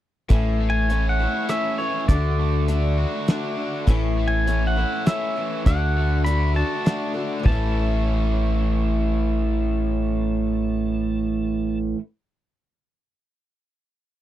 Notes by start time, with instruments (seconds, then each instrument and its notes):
0.29 fingered electric bass A1, steel-string acoustic guitar A2 E3 A3 C#4 E4 A4, kick, closed hi-hat
0.60 overdriven electric guitar A3
0.70 pedal steel guitar G#5
0.89 steel-string acoustic guitar A3 C#4 E4 A4, closed hi-hat
1.09 pedal steel guitar F#5
1.19 steel-string acoustic guitar A3 C#4 E4 A4
1.49 steel-string acoustic guitar A3 C#4 E4 A4, pedal steel guitar E5, cross-stick, closed hi-hat
1.78 overdriven electric guitar E3, steel-string acoustic guitar A3 C#4 E4 A4, pedal steel guitar C#5
2.08 fingered electric bass D2, steel-string acoustic guitar D3 A3 D4 F#4 A4, pedal steel guitar D5, kick, closed hi-hat
2.39 overdriven electric guitar A3
2.68 steel-string acoustic guitar A3 D4 F#4 A4, closed hi-hat
2.97 overdriven electric guitar F#4
3.27 steel-string acoustic guitar A3 D4 F#4 A4, snare, closed hi-hat
3.58 overdriven electric guitar D3
3.87 fingered electric bass A1, steel-string acoustic guitar A2 E3 A3 C#4 E4 A4, kick, closed hi-hat
4.17 overdriven electric guitar A3
4.28 pedal steel guitar G#5
4.46 steel-string acoustic guitar A3 C#4 E4 A4, closed hi-hat
4.67 pedal steel guitar F#5
4.76 steel-string acoustic guitar A3 C#4 E4 A4
5.06 steel-string acoustic guitar A3 C#4 E4 A4, pedal steel guitar E5, snare, closed hi-hat
5.36 overdriven electric guitar E3, steel-string acoustic guitar A3 C#4 E4 A4
5.66 fingered electric bass D2, steel-string acoustic guitar D3 A3 D4 F#4 A4, pedal steel guitar F#5, kick, closed hi-hat
5.96 overdriven electric guitar A3
6.25 steel-string acoustic guitar A3 D4 F#4 A4, pedal steel guitar B5, closed hi-hat
6.54 steel-string acoustic guitar D4 F#4 A4, pedal steel guitar A5
6.85 steel-string acoustic guitar A3 D4 F#4 A4, snare, closed hi-hat
7.14 overdriven electric guitar D3, steel-string acoustic guitar D4 F#4 A4
7.39 steel-string acoustic guitar A2 E3
7.44 fingered electric bass A1, overdriven electric guitar A2, steel-string acoustic guitar A3, pedal steel guitar A5, kick, floor tom
7.49 steel-string acoustic guitar C#4 E4
7.55 steel-string acoustic guitar A4